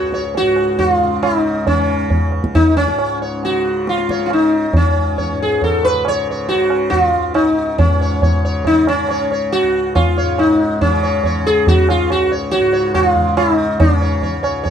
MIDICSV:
0, 0, Header, 1, 4, 480
1, 0, Start_track
1, 0, Key_signature, 7, "major"
1, 0, Tempo, 438276
1, 1828, Time_signature, 7, 2, 24, 8
1, 8535, Tempo, 428878
1, 16266, End_track
2, 0, Start_track
2, 0, Title_t, "Sitar"
2, 0, Program_c, 0, 104
2, 0, Note_on_c, 0, 66, 88
2, 0, Note_on_c, 0, 73, 35
2, 118, Note_off_c, 0, 73, 0
2, 151, Note_on_c, 0, 73, 33
2, 229, Note_off_c, 0, 66, 0
2, 369, Note_off_c, 0, 73, 0
2, 408, Note_on_c, 0, 66, 94
2, 862, Note_off_c, 0, 66, 0
2, 862, Note_on_c, 0, 66, 86
2, 993, Note_off_c, 0, 66, 0
2, 993, Note_on_c, 0, 65, 86
2, 1338, Note_off_c, 0, 65, 0
2, 1342, Note_on_c, 0, 64, 74
2, 1507, Note_off_c, 0, 64, 0
2, 1507, Note_on_c, 0, 63, 74
2, 1828, Note_off_c, 0, 63, 0
2, 1833, Note_on_c, 0, 61, 67
2, 2510, Note_off_c, 0, 61, 0
2, 2791, Note_on_c, 0, 63, 89
2, 3026, Note_off_c, 0, 63, 0
2, 3030, Note_on_c, 0, 61, 85
2, 3479, Note_off_c, 0, 61, 0
2, 3525, Note_on_c, 0, 73, 33
2, 3744, Note_off_c, 0, 73, 0
2, 3776, Note_on_c, 0, 66, 77
2, 4257, Note_off_c, 0, 66, 0
2, 4261, Note_on_c, 0, 65, 73
2, 4496, Note_on_c, 0, 73, 34
2, 4652, Note_off_c, 0, 65, 0
2, 4665, Note_on_c, 0, 65, 58
2, 4709, Note_off_c, 0, 73, 0
2, 4728, Note_off_c, 0, 65, 0
2, 4745, Note_on_c, 0, 63, 72
2, 5215, Note_off_c, 0, 63, 0
2, 5219, Note_on_c, 0, 61, 73
2, 5673, Note_on_c, 0, 73, 32
2, 5896, Note_off_c, 0, 73, 0
2, 5941, Note_on_c, 0, 68, 75
2, 5946, Note_off_c, 0, 61, 0
2, 6171, Note_off_c, 0, 68, 0
2, 6175, Note_on_c, 0, 69, 84
2, 6402, Note_on_c, 0, 71, 84
2, 6409, Note_off_c, 0, 69, 0
2, 6642, Note_off_c, 0, 71, 0
2, 6660, Note_on_c, 0, 73, 75
2, 6867, Note_off_c, 0, 73, 0
2, 6908, Note_on_c, 0, 73, 32
2, 7104, Note_on_c, 0, 66, 88
2, 7111, Note_off_c, 0, 73, 0
2, 7556, Note_off_c, 0, 66, 0
2, 7556, Note_on_c, 0, 66, 86
2, 7688, Note_off_c, 0, 66, 0
2, 7688, Note_on_c, 0, 65, 86
2, 8038, Note_off_c, 0, 65, 0
2, 8042, Note_on_c, 0, 63, 71
2, 8519, Note_off_c, 0, 63, 0
2, 8524, Note_on_c, 0, 61, 70
2, 8782, Note_on_c, 0, 73, 36
2, 9005, Note_off_c, 0, 73, 0
2, 9021, Note_on_c, 0, 73, 35
2, 9211, Note_off_c, 0, 61, 0
2, 9245, Note_off_c, 0, 73, 0
2, 9268, Note_on_c, 0, 73, 34
2, 9490, Note_off_c, 0, 73, 0
2, 9515, Note_on_c, 0, 63, 89
2, 9751, Note_off_c, 0, 63, 0
2, 9756, Note_on_c, 0, 61, 86
2, 10003, Note_on_c, 0, 73, 35
2, 10201, Note_off_c, 0, 61, 0
2, 10220, Note_off_c, 0, 73, 0
2, 10240, Note_on_c, 0, 73, 35
2, 10459, Note_off_c, 0, 73, 0
2, 10472, Note_on_c, 0, 66, 86
2, 10947, Note_off_c, 0, 66, 0
2, 10951, Note_on_c, 0, 65, 75
2, 11202, Note_on_c, 0, 73, 37
2, 11422, Note_off_c, 0, 73, 0
2, 11442, Note_on_c, 0, 63, 74
2, 11449, Note_off_c, 0, 65, 0
2, 11911, Note_off_c, 0, 63, 0
2, 11915, Note_on_c, 0, 61, 83
2, 12158, Note_on_c, 0, 73, 32
2, 12381, Note_off_c, 0, 73, 0
2, 12409, Note_on_c, 0, 73, 35
2, 12626, Note_off_c, 0, 73, 0
2, 12644, Note_on_c, 0, 68, 94
2, 12658, Note_off_c, 0, 61, 0
2, 12883, Note_off_c, 0, 68, 0
2, 12888, Note_on_c, 0, 66, 97
2, 13125, Note_off_c, 0, 66, 0
2, 13130, Note_on_c, 0, 65, 82
2, 13346, Note_off_c, 0, 65, 0
2, 13373, Note_on_c, 0, 66, 82
2, 13587, Note_off_c, 0, 66, 0
2, 13599, Note_on_c, 0, 73, 36
2, 13819, Note_off_c, 0, 73, 0
2, 13819, Note_on_c, 0, 66, 105
2, 14060, Note_on_c, 0, 73, 35
2, 14270, Note_off_c, 0, 66, 0
2, 14288, Note_off_c, 0, 73, 0
2, 14304, Note_on_c, 0, 66, 96
2, 14438, Note_off_c, 0, 66, 0
2, 14438, Note_on_c, 0, 65, 96
2, 14771, Note_off_c, 0, 65, 0
2, 14776, Note_on_c, 0, 64, 82
2, 14944, Note_off_c, 0, 64, 0
2, 14944, Note_on_c, 0, 63, 82
2, 15249, Note_off_c, 0, 63, 0
2, 15254, Note_on_c, 0, 61, 76
2, 15502, Note_on_c, 0, 73, 35
2, 15724, Note_off_c, 0, 73, 0
2, 15741, Note_on_c, 0, 73, 36
2, 15927, Note_off_c, 0, 61, 0
2, 15949, Note_off_c, 0, 73, 0
2, 15962, Note_on_c, 0, 73, 36
2, 16179, Note_off_c, 0, 73, 0
2, 16192, Note_on_c, 0, 73, 37
2, 16266, Note_off_c, 0, 73, 0
2, 16266, End_track
3, 0, Start_track
3, 0, Title_t, "Tanpura"
3, 0, Program_c, 1, 104
3, 0, Note_on_c, 1, 37, 59
3, 0, Note_on_c, 1, 44, 48
3, 0, Note_on_c, 1, 49, 48
3, 441, Note_off_c, 1, 44, 0
3, 446, Note_on_c, 1, 44, 53
3, 1129, Note_off_c, 1, 49, 0
3, 1129, Note_on_c, 1, 49, 52
3, 1798, Note_off_c, 1, 49, 0
3, 1798, Note_on_c, 1, 49, 58
3, 2475, Note_off_c, 1, 37, 0
3, 2480, Note_on_c, 1, 37, 52
3, 3169, Note_off_c, 1, 44, 0
3, 3173, Note_on_c, 1, 44, 53
3, 3835, Note_off_c, 1, 49, 0
3, 3835, Note_on_c, 1, 49, 56
3, 4505, Note_off_c, 1, 49, 0
3, 4505, Note_on_c, 1, 49, 49
3, 5156, Note_off_c, 1, 37, 0
3, 5161, Note_on_c, 1, 37, 56
3, 5830, Note_off_c, 1, 44, 0
3, 5835, Note_on_c, 1, 44, 51
3, 6496, Note_off_c, 1, 49, 0
3, 6496, Note_on_c, 1, 49, 51
3, 7157, Note_off_c, 1, 49, 0
3, 7157, Note_on_c, 1, 49, 53
3, 7837, Note_off_c, 1, 37, 0
3, 7841, Note_on_c, 1, 37, 51
3, 8539, Note_off_c, 1, 44, 0
3, 8544, Note_on_c, 1, 44, 52
3, 9230, Note_off_c, 1, 49, 0
3, 9230, Note_on_c, 1, 49, 54
3, 9906, Note_off_c, 1, 49, 0
3, 9906, Note_on_c, 1, 49, 58
3, 10582, Note_off_c, 1, 37, 0
3, 10586, Note_on_c, 1, 37, 53
3, 11237, Note_off_c, 1, 44, 0
3, 11241, Note_on_c, 1, 44, 58
3, 11917, Note_off_c, 1, 49, 0
3, 11917, Note_on_c, 1, 49, 60
3, 12589, Note_off_c, 1, 49, 0
3, 12589, Note_on_c, 1, 49, 57
3, 13245, Note_off_c, 1, 37, 0
3, 13250, Note_on_c, 1, 37, 65
3, 13906, Note_off_c, 1, 44, 0
3, 13910, Note_on_c, 1, 44, 60
3, 14568, Note_off_c, 1, 49, 0
3, 14568, Note_on_c, 1, 49, 57
3, 15248, Note_off_c, 1, 49, 0
3, 15248, Note_on_c, 1, 49, 62
3, 15886, Note_off_c, 1, 37, 0
3, 15890, Note_on_c, 1, 37, 64
3, 16266, Note_off_c, 1, 37, 0
3, 16266, Note_off_c, 1, 44, 0
3, 16266, Note_off_c, 1, 49, 0
3, 16266, End_track
4, 0, Start_track
4, 0, Title_t, "Tabla"
4, 136, Note_on_c, 9, 62, 56
4, 245, Note_off_c, 9, 62, 0
4, 381, Note_on_c, 9, 63, 66
4, 490, Note_off_c, 9, 63, 0
4, 616, Note_on_c, 9, 60, 55
4, 725, Note_off_c, 9, 60, 0
4, 860, Note_on_c, 9, 63, 64
4, 860, Note_on_c, 9, 64, 53
4, 969, Note_off_c, 9, 63, 0
4, 969, Note_off_c, 9, 64, 0
4, 1346, Note_on_c, 9, 60, 65
4, 1456, Note_off_c, 9, 60, 0
4, 1826, Note_on_c, 9, 63, 87
4, 1826, Note_on_c, 9, 64, 77
4, 1935, Note_off_c, 9, 63, 0
4, 1935, Note_off_c, 9, 64, 0
4, 2304, Note_on_c, 9, 63, 67
4, 2304, Note_on_c, 9, 64, 56
4, 2413, Note_off_c, 9, 63, 0
4, 2413, Note_off_c, 9, 64, 0
4, 2542, Note_on_c, 9, 60, 54
4, 2651, Note_off_c, 9, 60, 0
4, 2671, Note_on_c, 9, 37, 53
4, 2781, Note_off_c, 9, 37, 0
4, 2793, Note_on_c, 9, 63, 78
4, 2793, Note_on_c, 9, 64, 69
4, 2902, Note_off_c, 9, 63, 0
4, 2902, Note_off_c, 9, 64, 0
4, 3033, Note_on_c, 9, 60, 57
4, 3143, Note_off_c, 9, 60, 0
4, 3157, Note_on_c, 9, 37, 51
4, 3266, Note_off_c, 9, 37, 0
4, 3270, Note_on_c, 9, 60, 58
4, 3379, Note_off_c, 9, 60, 0
4, 3759, Note_on_c, 9, 63, 68
4, 3868, Note_off_c, 9, 63, 0
4, 4243, Note_on_c, 9, 62, 64
4, 4352, Note_off_c, 9, 62, 0
4, 4359, Note_on_c, 9, 62, 56
4, 4469, Note_off_c, 9, 62, 0
4, 4482, Note_on_c, 9, 37, 58
4, 4588, Note_on_c, 9, 62, 48
4, 4591, Note_off_c, 9, 37, 0
4, 4698, Note_off_c, 9, 62, 0
4, 4713, Note_on_c, 9, 60, 66
4, 4823, Note_off_c, 9, 60, 0
4, 5184, Note_on_c, 9, 63, 89
4, 5184, Note_on_c, 9, 64, 76
4, 5294, Note_off_c, 9, 63, 0
4, 5294, Note_off_c, 9, 64, 0
4, 5676, Note_on_c, 9, 63, 68
4, 5676, Note_on_c, 9, 64, 61
4, 5785, Note_off_c, 9, 63, 0
4, 5785, Note_off_c, 9, 64, 0
4, 6153, Note_on_c, 9, 63, 76
4, 6153, Note_on_c, 9, 64, 63
4, 6262, Note_off_c, 9, 63, 0
4, 6262, Note_off_c, 9, 64, 0
4, 6386, Note_on_c, 9, 60, 55
4, 6496, Note_off_c, 9, 60, 0
4, 6624, Note_on_c, 9, 60, 60
4, 6734, Note_off_c, 9, 60, 0
4, 7100, Note_on_c, 9, 63, 69
4, 7210, Note_off_c, 9, 63, 0
4, 7340, Note_on_c, 9, 60, 55
4, 7449, Note_off_c, 9, 60, 0
4, 7577, Note_on_c, 9, 63, 61
4, 7577, Note_on_c, 9, 64, 60
4, 7686, Note_off_c, 9, 63, 0
4, 7686, Note_off_c, 9, 64, 0
4, 8050, Note_on_c, 9, 60, 63
4, 8159, Note_off_c, 9, 60, 0
4, 8529, Note_on_c, 9, 63, 85
4, 8529, Note_on_c, 9, 64, 84
4, 8641, Note_off_c, 9, 63, 0
4, 8641, Note_off_c, 9, 64, 0
4, 9013, Note_on_c, 9, 63, 74
4, 9013, Note_on_c, 9, 64, 60
4, 9125, Note_off_c, 9, 63, 0
4, 9125, Note_off_c, 9, 64, 0
4, 9490, Note_on_c, 9, 63, 74
4, 9490, Note_on_c, 9, 64, 70
4, 9602, Note_off_c, 9, 63, 0
4, 9602, Note_off_c, 9, 64, 0
4, 9743, Note_on_c, 9, 60, 58
4, 9855, Note_off_c, 9, 60, 0
4, 9982, Note_on_c, 9, 60, 65
4, 10094, Note_off_c, 9, 60, 0
4, 10230, Note_on_c, 9, 60, 60
4, 10342, Note_off_c, 9, 60, 0
4, 10471, Note_on_c, 9, 63, 74
4, 10583, Note_off_c, 9, 63, 0
4, 10957, Note_on_c, 9, 60, 62
4, 10957, Note_on_c, 9, 64, 62
4, 11069, Note_off_c, 9, 60, 0
4, 11069, Note_off_c, 9, 64, 0
4, 11191, Note_on_c, 9, 62, 57
4, 11303, Note_off_c, 9, 62, 0
4, 11434, Note_on_c, 9, 60, 71
4, 11546, Note_off_c, 9, 60, 0
4, 11915, Note_on_c, 9, 63, 94
4, 11915, Note_on_c, 9, 64, 83
4, 12027, Note_off_c, 9, 63, 0
4, 12027, Note_off_c, 9, 64, 0
4, 12389, Note_on_c, 9, 63, 70
4, 12389, Note_on_c, 9, 64, 65
4, 12501, Note_off_c, 9, 63, 0
4, 12501, Note_off_c, 9, 64, 0
4, 12873, Note_on_c, 9, 63, 75
4, 12873, Note_on_c, 9, 64, 69
4, 12985, Note_off_c, 9, 63, 0
4, 12985, Note_off_c, 9, 64, 0
4, 13116, Note_on_c, 9, 60, 58
4, 13228, Note_off_c, 9, 60, 0
4, 13358, Note_on_c, 9, 60, 70
4, 13470, Note_off_c, 9, 60, 0
4, 13834, Note_on_c, 9, 63, 79
4, 13946, Note_off_c, 9, 63, 0
4, 14300, Note_on_c, 9, 60, 68
4, 14300, Note_on_c, 9, 64, 62
4, 14412, Note_off_c, 9, 60, 0
4, 14412, Note_off_c, 9, 64, 0
4, 14544, Note_on_c, 9, 64, 52
4, 14656, Note_off_c, 9, 64, 0
4, 14779, Note_on_c, 9, 60, 72
4, 14891, Note_off_c, 9, 60, 0
4, 15258, Note_on_c, 9, 63, 99
4, 15258, Note_on_c, 9, 64, 84
4, 15370, Note_off_c, 9, 63, 0
4, 15370, Note_off_c, 9, 64, 0
4, 15733, Note_on_c, 9, 63, 69
4, 15733, Note_on_c, 9, 64, 62
4, 15845, Note_off_c, 9, 63, 0
4, 15845, Note_off_c, 9, 64, 0
4, 15974, Note_on_c, 9, 60, 59
4, 16086, Note_off_c, 9, 60, 0
4, 16209, Note_on_c, 9, 63, 77
4, 16209, Note_on_c, 9, 64, 70
4, 16266, Note_off_c, 9, 63, 0
4, 16266, Note_off_c, 9, 64, 0
4, 16266, End_track
0, 0, End_of_file